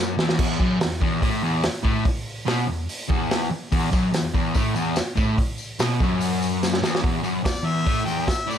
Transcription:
Already playing: F#2
0.18 E2, snare
0.29 snare
0.39 E2, kick, crash
0.60 F#2, kick
0.81 E2, snare, open hi-hat
1.01 E2, kick
1.21 A2, kick, open hi-hat
1.42 E2
1.63 snare, open hi-hat
1.83 A2, kick
2.04 muted distorted electric guitar stroke, kick, open hi-hat
2.46 B2, snare, open hi-hat
2.66 E2
2.89 open hi-hat
3.08 E2, kick
3.31 snare, open hi-hat
3.50 muted distorted electric guitar stroke
3.72 E2, kick, open hi-hat
3.91 F#2, kick, tambourine
4.12 E2, snare, open hi-hat, tambourine
4.33 E2, kick, tambourine
4.53 A2, kick, open hi-hat, tambourine
4.74 E2, tambourine
4.96 snare, open hi-hat, tambourine
5.16 A2, kick, tambourine
5.37 muted distorted electric guitar stroke, kick, open hi-hat, tambourine
5.58 tambourine
5.79 B2, snare, open hi-hat, tambourine
6.00 F#2, kick, tambourine
6.21 open hi-hat, tambourine
6.42 tambourine
6.63 snare, tambourine
6.74 snare
6.82 E2, snare, tambourine
6.95 snare
7.02 E2, kick, open hi-hat
7.23 F#2, tambourine
7.44 E2 D5, kick, snare, open hi-hat, tambourine
7.56 tambourine
7.63 E2 E5
7.77 tambourine
7.85 A2, kick, open hi-hat, tambourine
8.05 E2 G5, tambourine
8.20 tambourine
8.28 E5, kick, snare, open hi-hat, tambourine
8.46 A2 D5
8.51 tambourine

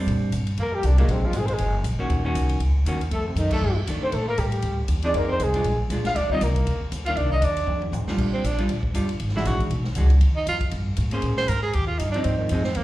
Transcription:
Already playing: G3
0.00 C4 D4
0.07 A#2, ride
0.32 G2, hi-hat pedal, ride
0.47 ride
0.57 F2 A#3 A#4, ride
0.73 G3 G4
0.83 C2 D3 D4, hi-hat pedal, ride
0.97 A#2 F#3 G#3 A#3 D4, ride
1.08 A#1 C3 C4, ride
1.24 F3 F4
1.33 G#1 G#3, hi-hat pedal, ride
1.37 C4 G#4
1.46 C5, ride
1.50 G#3 G#4
1.58 F#1, ride
1.84 A#1, hi-hat pedal, ride
1.99 D#3 A#3 C#4 F#4
2.09 D#2, ride
2.24 D#3 A#3 C#4 F#4
2.35 C2, hi-hat pedal, ride
2.49 ride
2.60 C#2, ride
2.85 D#2 D#3 A#3 C#4 F#4, hi-hat pedal, ride
3.01 ride
3.11 F2 A3 A4, ride
3.27 C3 C4
3.35 F#2 D#3 D#4, hi-hat pedal, ride
3.51 D#3 A3 D4 A4, kick, crash
3.62 G2
3.87 D3 D#3 A3 D4, hi-hat pedal, ride
4.02 C4 C5
4.12 A#2 A3 A4, ride
4.28 A#3 A#4
4.38 A2 G3 G4, hi-hat pedal, ride
4.52 ride
4.62 D2, ride
4.88 D#2, hi-hat pedal, ride
5.02 F3 C4 D4 D#4 G#4, ride
5.07 D5
5.14 F2 A#3 A#4, ride
5.27 C4
5.32 C5
5.39 C2 G#3, hi-hat pedal, ride
5.44 G#4
5.54 G#3 D4 F4, ride
5.64 A#1, ride
5.90 D2 G#3 D4 F4, hi-hat pedal, ride
6.04 F4 F5, muted upright bass stroke, snare, ride
6.15 D#2 D4 D5, snare, ride
6.29 D#3 G3 C4 D#4 F4 D#5, muted upright bass stroke, kick
6.41 C2 A#3 A#4, snare, hi-hat pedal, ride
6.55 kick, ride
6.67 D#2, ride
6.81 muted upright bass stroke
6.92 D2, hi-hat pedal, ride
7.06 D#3 A#3 D4 F4 F5, ride
7.16 C2 D4 D5, ride
7.30 D#4 D#5, kick
7.41 D#2 D4 D5, hi-hat pedal, ride
7.57 ride
7.67 F2, floor tom
7.82 floor tom
7.92 A2, floor tom, hi-hat pedal
8.07 G3 D4 F4, muted upright bass stroke, snare
8.18 A#2, kick, crash
8.34 C4
8.44 A#1 D4, hi-hat pedal, ride
8.58 G3 D4 F4, ride
8.69 D2, ride
8.83 kick
8.94 G1 G3 D4 F4, hi-hat pedal, ride
9.09 ride
9.20 G#1, ride
9.29 snare
9.36 E3 G#3 D4 E4 F#4, snare
9.45 A#1 F#4, snare, hi-hat pedal, ride
9.59 kick, ride
9.70 B1, ride
9.84 snare
9.95 C#2 E3 G#3 D4 F#4, hi-hat pedal, ride
10.10 ride
10.21 D#2, ride
10.36 D#4
10.47 F2 F4, hi-hat pedal, ride
10.61 kick, ride
10.71 G2, ride
10.97 A2, hi-hat pedal, ride
11.11 A#3 C#4 G#4 C5, ride
11.22 A#2, ride
11.37 C5, muted upright bass stroke, snare
11.48 G#2 A#4, hi-hat pedal, ride
11.62 G#4
11.73 D#2 G4, ride
11.87 F4
11.99 G2 D#4, hi-hat pedal, ride
12.11 F3 D4, ride
12.16 C4 D#4
12.24 G#2 C4, ride
12.38 D#3
12.49 F2 F3 G#3 C4 D#4, hi-hat pedal, ride
12.64 C4, snare
12.75 D#2 A#3, ride

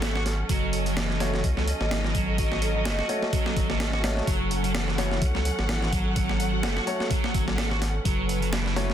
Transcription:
Already playing: G#1 F#3 C#4 A4 F#5
0.02 A3, snare, closed hi-hat
0.16 F#4, snare
0.26 snare, closed hi-hat
0.49 F#1 F#3 D#5, kick, closed hi-hat
0.73 closed hi-hat
0.86 F#3, closed hi-hat
0.97 E3, snare, closed hi-hat
1.10 snare
1.20 A3 F#4 C#5, snare, closed hi-hat
1.34 E3, snare
1.44 C#2, kick, closed hi-hat
1.57 F#3, snare
1.68 closed hi-hat
1.80 G#1, snare
1.91 E3, snare, closed hi-hat
2.04 snare
2.15 F#3, kick, closed hi-hat
2.38 F#3, kick, closed hi-hat
2.52 snare
2.62 closed hi-hat
2.75 F#3
2.85 F#1 A3, snare, closed hi-hat
2.99 F#4, snare
3.09 A3 F#4 C#5, closed hi-hat
3.23 snare
3.33 F#3, kick, closed hi-hat
3.46 snare
3.56 G#1, kick, closed hi-hat
3.70 F#3, snare
3.80 A3, snare, closed hi-hat
3.93 F#4, snare
4.04 A3 F#4 C#5, snare, closed hi-hat
4.17 snare
4.27 F#1 F#3 F#5, kick, closed hi-hat
4.51 closed hi-hat
4.64 F#3, closed hi-hat
4.74 E3, snare, closed hi-hat
4.88 snare
4.98 A3 F#4 C#5, snare, closed hi-hat
5.11 E3, snare
5.22 C#2, kick, closed hi-hat
5.35 F#3, snare
5.45 closed hi-hat
5.59 G#1, snare
5.69 E3, snare, closed hi-hat
5.82 snare
5.92 F#3, kick, closed hi-hat
6.16 F#3, kick, closed hi-hat
6.29 snare
6.40 closed hi-hat
6.53 F#3
6.63 F#1 A3, snare, closed hi-hat
6.76 F#4, snare
6.87 A3 F#4 C#5, closed hi-hat
7.00 snare
7.10 F#3, kick, closed hi-hat
7.24 snare
7.34 G#1, kick, closed hi-hat
7.47 F#3, snare
7.57 A3, snare, closed hi-hat
7.71 F#4, snare
7.82 snare, closed hi-hat
8.05 F#1 F#3 B4, kick, closed hi-hat
8.29 closed hi-hat
8.42 F#3, closed hi-hat
8.52 E3, snare, closed hi-hat
8.66 snare
8.76 A3 F#4 C#5, snare, closed hi-hat
8.89 E3, snare

